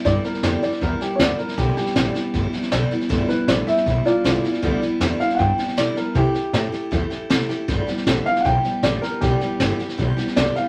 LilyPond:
<<
  \new Staff \with { instrumentName = "Upright piano" } { \time 4/4 \key g \mixolydian \tempo 4 = 157 d''8 bes'8 g'8 d''8 bes'8 g'8 <cis'' d''>8 bes'8 | g'8 g'2 r4. | r8 b'8 d''8 e''4 <f' d''>4.~ | <f' d''>8 r4 f''8 <fis'' g''>4 d''8 bes'8 |
g'2 r2 | r4. f''8 <fis'' g''>4 d''8 bes'8 | g'2 r4 d''8 f''8 | }
  \new Staff \with { instrumentName = "Steel-string acoustic guitar" } { \clef bass \time 4/4 \key g \mixolydian <g, d e g b e'>8 <e g b e'>8 <g, d e g b e'>8 <e g b e'>8 <e g b e'>8 <e g b e'>8 <g, d e g b e'>8 <e g b e'>8 | <g, d e g b e'>8 <e g b e'>8 <g, d e g b e'>8 <e g b e'>8 <e g b e'>8 <e g b e'>8 <g, d e g b e'>8 <e g b e'>8 | <g, d e g b e'>8 <e g b e'>8 <g, d e g b e'>8 <e g b e'>8 <e g b e'>8 <e g b e'>8 <g, d e g b e'>8 <e g b e'>8 | <g, d e g b e'>8 <e g b e'>8 <g, d e g b e'>8 <e g b e'>8 <e g b e'>8 <e g b e'>8 <g, d e g b e'>8 <e g b e'>8 |
<c e a e' g'>8 <a e' g'>8 <c e a e' g'>8 <a e' g'>8 <e a e' g'>8 <a e' g'>8 <c e a e' g'>8 <a e' g'>8 | <g, d e g b g'>8 <e g b g'>8 <g, d e g b g'>8 <e g b g'>8 <e g b g'>8 <e g b g'>8 <g, d e g b g'>8 <e g b g'>8 | <g, d e g b g'>8 <e g b g'>8 <g, d e g b g'>8 <e g b g'>8 <e g b g'>8 <e g b g'>8 <g, d e g b g'>8 <e g b g'>8 | }
  \new Staff \with { instrumentName = "Upright bass" } { \clef bass \time 4/4 \key g \mixolydian g,8 r8 f,8 r8 e,8 r8 d,8 r8 | b,,8 r8 a,,8 r8 g,,8 r8 b,,8 r8 | g,,8 r8 a,,8 r8 b,,8 r8 c,8 r8 | d,8 r8 e,8 r8 g,8 r8 b,8 r8 |
c8 r8 a,8 r8 e,8 r8 c,8 r8 | g,,8 r8 a,,8 r8 b,,8 r8 a,,8 r8 | b,,8 r8 g,,8 r8 b,,8 r8 c,8 r8 | }
  \new DrumStaff \with { instrumentName = "Drums" } \drummode { \time 4/4 <bd sn>8 sn16 sn16 <hhp sn>8 sn16 sn16 <bd sn>8 sn8 <hhp sn>8 sn16 sn16 | <bd sn>8 sn16 sn16 <hhp sn>8 sn8 <bd sn>8 sn16 sn16 <hhp sn>8 sn16 sn16 | <bd sn>8 sn8 <hhp sn>8 sn16 sn16 <bd sn>8 sn8 <hhp sn>8 sn16 sn16 | <bd sn>8 sn8 <hhp sn>8 sn16 sn16 <bd sn>8 sn16 sn16 <hhp sn>8 sn8 |
<bd sn>8 sn8 <hhp sn>8 sn8 <bd sn>8 sn8 <hhp sn>8 sn8 | <bd sn>8 sn16 sn16 <hhp sn>8 sn16 sn16 <bd sn>8 sn8 <hhp sn>8 sn8 | <bd sn>8 sn8 <hhp sn>8 sn16 sn16 <bd sn>8 sn16 sn16 <hhp sn>8 sn8 | }
>>